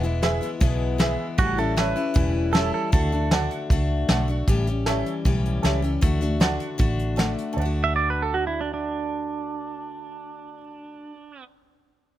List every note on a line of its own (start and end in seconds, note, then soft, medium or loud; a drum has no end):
0.00 0.38 E1 medium
0.00 0.23 B3 medium
0.00 0.23 E4 medium
0.05 0.21 E3 soft
0.05 0.22 G#3 medium
0.22 0.42 E3 medium
0.22 0.42 G#3 medium
0.22 0.41 B3 medium
0.22 0.40 E4 medium
0.22 0.47 G#4 medium
0.22 0.48 B4 medium
0.22 0.48 E5 loud
0.22 snare loud
0.22 closed hi-hat medium
0.41 0.60 E3 soft
0.41 0.60 G#3 medium
0.41 0.61 B3 soft
0.41 0.61 E4 soft
0.41 closed hi-hat medium
0.60 1.15 B1 medium
0.60 1.00 E2 medium
0.60 1.00 B2 medium
0.60 0.97 E3 medium
0.60 0.98 G#3 medium
0.60 0.99 B3 medium
0.60 0.99 E4 loud
0.60 kick loud
0.60 closed hi-hat medium
0.98 1.37 E3 medium
0.98 1.38 G#3 medium
0.98 1.39 B3 medium
0.98 1.38 E4 medium
0.98 1.25 G#4 medium
0.98 1.25 B4 medium
0.98 1.25 E5 loud
0.98 snare loud
0.98 closed hi-hat medium
1.38 1.93 A1 medium
1.38 1.58 A2 medium
1.38 1.58 E3 medium
1.38 1.58 G3 medium
1.38 1.57 C#4 medium
1.38 1.57 E4 medium
1.38 1.58 F#4 medium
1.38 kick loud
1.38 closed hi-hat medium
1.58 1.76 G3 soft
1.58 1.77 C#4 medium
1.58 1.77 E4 medium
1.58 1.77 A4 medium
1.77 1.96 E3 medium
1.77 1.97 G3 medium
1.77 1.96 C#4 medium
1.77 1.95 E4 medium
1.77 2.02 A4 medium
1.77 2.53 B4 medium
1.77 2.02 C#5 medium
1.77 2.03 E5 loud
1.77 snare loud
1.77 closed hi-hat medium
1.96 2.14 G3 soft
1.96 2.14 C#4 medium
1.96 2.14 E4 medium
1.96 closed hi-hat medium
2.14 2.70 E1 medium
2.14 2.54 A2 medium
2.14 2.52 E3 medium
2.14 2.52 G3 medium
2.14 2.53 C#4 medium
2.14 2.54 E4 medium
2.14 kick loud
2.14 closed hi-hat medium
2.53 2.92 E3 medium
2.53 2.92 G3 medium
2.53 2.93 C#4 medium
2.53 2.93 E4 medium
2.53 2.72 A4 medium
2.53 2.79 A4 medium
2.53 2.80 C#5 medium
2.53 2.80 E5 medium
2.53 snare medium
2.53 closed hi-hat medium
2.74 2.92 A4 medium
2.92 3.47 D2 medium
2.92 3.12 D3 medium
2.92 3.12 A3 medium
2.92 3.12 D4 medium
2.92 3.11 F#4 medium
2.92 3.30 A4 medium
2.92 kick loud
2.92 closed hi-hat medium
3.12 3.31 A3 soft
3.12 3.32 D4 medium
3.12 3.32 F#4 medium
3.31 3.70 D3 medium
3.31 3.70 A3 medium
3.31 3.70 D4 medium
3.31 3.71 F#4 medium
3.31 3.56 A4 medium
3.31 3.57 D5 medium
3.31 3.57 F#5 loud
3.31 snare loud
3.31 closed hi-hat medium
3.51 closed hi-hat medium
3.70 4.03 C#2 medium
3.70 4.08 A3 medium
3.70 4.09 D4 medium
3.70 4.10 F#4 medium
3.70 kick loud
3.70 closed hi-hat medium
4.08 4.42 B1 medium
4.08 4.28 D3 medium
4.08 4.29 A3 medium
4.08 4.28 D4 medium
4.08 4.27 F#4 medium
4.08 4.34 A4 medium
4.08 4.34 D5 medium
4.08 4.35 F#5 medium
4.08 snare loud
4.08 closed hi-hat medium
4.28 4.48 A3 soft
4.28 4.48 D4 soft
4.28 4.47 F#4 medium
4.47 5.02 A1 medium
4.47 4.67 A2 medium
4.47 4.67 E3 medium
4.47 4.67 G3 medium
4.47 4.67 C#4 medium
4.47 4.66 G4 loud
4.47 kick loud
4.47 closed hi-hat medium
4.67 4.86 G3 soft
4.67 4.87 C#4 soft
4.67 4.87 G4 soft
4.67 closed hi-hat medium
4.86 5.25 E3 medium
4.86 5.25 G3 medium
4.86 5.25 C#4 medium
4.86 5.25 G4 medium
4.86 5.11 A4 medium
4.86 5.11 C#5 medium
4.86 5.12 E5 loud
4.86 snare loud
4.86 closed hi-hat medium
5.06 closed hi-hat medium
5.25 5.58 B1 medium
5.25 5.64 A2 medium
5.25 5.62 E3 medium
5.25 5.63 G3 medium
5.25 5.64 C#4 medium
5.25 5.64 G4 medium
5.25 kick medium
5.25 closed hi-hat medium
5.46 closed hi-hat medium
5.63 5.97 C#2 medium
5.63 5.83 E3 medium
5.63 5.83 G3 medium
5.63 5.82 C#4 medium
5.63 5.81 G4 medium
5.63 5.88 A4 medium
5.63 5.88 C#5 medium
5.63 5.89 E5 medium
5.63 snare medium
5.63 closed hi-hat medium
5.82 6.02 G3 soft
5.82 6.02 C#4 soft
5.82 6.02 G4 medium
5.82 closed hi-hat medium
6.01 6.57 D2 medium
6.01 6.21 D3 medium
6.01 6.22 A3 medium
6.01 6.21 D4 medium
6.01 6.20 F#4 medium
6.01 kick loud
6.01 closed hi-hat medium
6.21 6.40 A3 soft
6.21 6.41 D4 medium
6.21 6.41 F#4 medium
6.21 closed hi-hat medium
6.40 6.77 D3 medium
6.40 6.78 A3 medium
6.40 6.78 D4 medium
6.40 6.78 F#4 medium
6.40 6.66 A4 medium
6.40 6.66 D5 medium
6.40 6.66 F#5 loud
6.40 snare loud
6.40 closed hi-hat medium
6.60 closed hi-hat medium
6.78 7.34 A1 medium
6.78 7.15 D3 medium
6.78 7.16 A3 medium
6.78 7.17 D4 medium
6.78 7.17 F#4 medium
6.78 kick loud
6.78 closed hi-hat medium
6.99 closed hi-hat medium
7.16 7.52 D3 medium
7.16 7.56 A3 medium
7.16 7.57 D4 medium
7.16 7.57 F#4 medium
7.16 7.43 A4 medium
7.16 7.43 D5 medium
7.16 7.43 F#5 medium
7.16 snare loud
7.16 closed hi-hat medium
7.38 closed hi-hat medium
7.53 10.57 D2 medium
7.53 11.03 D3 medium
7.53 10.54 A4 medium
7.53 10.57 D5 medium
7.58 11.08 A3 medium
7.58 11.11 D4 medium
7.58 10.61 F#5 medium
7.65 11.15 F#4 medium
7.84 7.95 E5 medium
7.96 8.08 D5 medium
8.10 8.22 B4 medium
8.22 8.35 A4 medium
8.34 8.47 F#4 medium
8.47 8.60 E4 medium
8.61 8.72 D4 medium
8.74 11.43 D4 medium